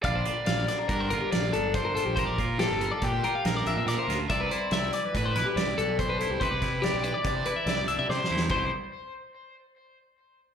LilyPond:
<<
  \new Staff \with { instrumentName = "Clean electric guitar" } { \time 5/4 \key c \major \tempo 4 = 142 f''16 c''16 d''8 f''8 d''16 bes'8 c''16 bes'16 g'8 r16 a'8 r16 bes'16 a'16 g'16 | c''16 d''8 r16 g'8 bes'16 d''8 c''16 bes'16 f''8 d''16 e''16 e''16 d''16 c''8 r16 | e''16 b'16 c''8 e''8 d''16 b'8 c''16 b'16 g'8 r16 a'8 r16 b'16 a'16 g'16 | c''16 d''8 r16 g'8 b'16 d''8 c''16 b'16 e''8 d''16 e''16 e''16 d''16 c''8 r16 |
c''8 r1 r8 | }
  \new Staff \with { instrumentName = "Overdriven electric guitar" } { \time 5/4 \key c \major d''2 bes'4 d''4 c''4 | bes'4 a'4 g'4 bes'4 bes'8. r16 | d''2 b'4 d''4 c''4 | b'4 d''4 d''4 d''4 c''8. r16 |
c''8 r1 r8 | }
  \new Staff \with { instrumentName = "Clean electric guitar" } { \time 5/4 \key c \major << { <d g d' f'>8 f'4. d'8 f'4 d'4 f'8 | r8 f'4. d'8 f'4 d'4 f'8 | r8 e'4. d'8 e'4 d'4 e'8~ | e'8 e'4. d'8 e'4 d'4 e'8 |
<e b d' e'>8 r1 r8 | } \\ { bes,4. d4. f,4 bes,4 | bes,4. d4. f,4 bes,4 | c4. e4. g,4 r4 | c4. e4. g,4 c4 |
c8 r1 r8 | } >> }
  \new Staff \with { instrumentName = "Fingered electric bass" } { \clef bass \time 5/4 \key c \major bes,,8 r8 bes,,8 r8 g,8 g,,16 r16 bes,,8 g,,4~ g,,16 bes,,16~ | bes,,16 bes,,16 bes,8. g,,8 r16 bes,8 r8 bes,,8 bes,,16 bes,16 bes,16 r16 d,8 | c,8 r8 c,8 r8 a,8 b,,16 r16 c,8 b,,4~ b,,16 c,16 | c,16 c,16 c8. b,,8 r16 c8 r8 c,8 c,16 c16 c16 r16 e,8 |
c,8 r1 r8 | }
  \new DrumStaff \with { instrumentName = "Drums" } \drummode { \time 5/4 <hh bd>8 hh8 <hh sn>8 <hh sn>8 <hh bd>8 hh8 <hh sn>8 hh8 <hh bd>8 hh8 | <hh bd>8 <hh bd>8 <hh sn>8 hh8 <hh bd>8 hh8 <hh sn>8 hh8 <hh sn>8 <hh sn>8 | <hh bd>8 hh8 <hh sn>8 hh8 <hh bd>8 <hh sn>8 <hh sn>8 hh8 <hh bd>8 hh8 | <hh bd>8 <hh bd sn>8 <hh sn>8 hh8 <hh bd>8 hh8 <hh sn>8 hh8 \tuplet 3/2 { sn8 sn8 sn8 } |
<cymc bd>4 r4 r4 r4 r4 | }
>>